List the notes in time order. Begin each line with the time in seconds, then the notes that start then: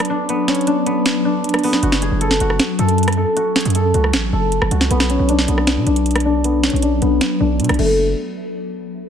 Already playing: F#3 B3 D4 F#4 A4
0.00 cross-stick, closed hi-hat
0.05 closed hi-hat
0.10 D4
0.29 B3, closed hi-hat
0.48 C#4, finger snap, snare, closed hi-hat
0.55 closed hi-hat
0.61 closed hi-hat
0.67 D4, closed hi-hat
0.86 B3, closed hi-hat
1.06 finger snap, snare, closed hi-hat
1.25 D4
1.44 closed hi-hat
1.49 closed hi-hat
1.54 cross-stick, closed hi-hat
1.59 closed hi-hat
1.63 B3, open hi-hat
1.73 snare
1.83 F#1 C#4 F#4 A4 G#5, closed hi-hat
1.92 finger snap, snare
2.02 G#4, closed hi-hat
2.12 F#1
2.21 A4, closed hi-hat
2.31 snare
2.40 F#1 F#4, closed hi-hat
2.50 cross-stick
2.59 finger snap, snare, closed hi-hat
2.79 F#2 A4, closed hi-hat
2.89 closed hi-hat
2.98 closed hi-hat
3.03 closed hi-hat
3.08 cross-stick, closed hi-hat
3.13 closed hi-hat
3.17 A4
3.36 F#4, closed hi-hat
3.56 G#4, finger snap, snare, closed hi-hat
3.61 closed hi-hat
3.65 F#2, closed hi-hat
3.70 closed hi-hat
3.75 A4, closed hi-hat
3.94 C#2 F#4, closed hi-hat
4.04 cross-stick
4.13 A1, finger snap, snare, closed hi-hat
4.33 F#1 A4
4.52 closed hi-hat
4.62 F#1, cross-stick
4.71 C#2 F#4, closed hi-hat
4.81 snare
4.90 B1 F#3 B3 D4, closed hi-hat
5.00 finger snap, snare
5.10 C#4, closed hi-hat
5.19 B1
5.29 D4, closed hi-hat
5.39 snare
5.48 B1 B3, closed hi-hat
5.58 cross-stick
5.67 finger snap, snare, closed hi-hat
5.77 B2
5.86 B1 D4, closed hi-hat
5.96 closed hi-hat
6.06 closed hi-hat
6.11 closed hi-hat
6.16 cross-stick, closed hi-hat
6.20 closed hi-hat
6.25 D4
6.44 B3, closed hi-hat
6.63 C#4, finger snap, snare, closed hi-hat
6.70 B1, closed hi-hat
6.76 closed hi-hat
6.82 D4, closed hi-hat
7.02 B1 B3, closed hi-hat
7.21 finger snap, snare, closed hi-hat
7.40 B1 D4
7.60 B2, closed hi-hat
7.64 closed hi-hat
7.69 B1, cross-stick, closed hi-hat
7.74 closed hi-hat
7.79 F#1 A3, crash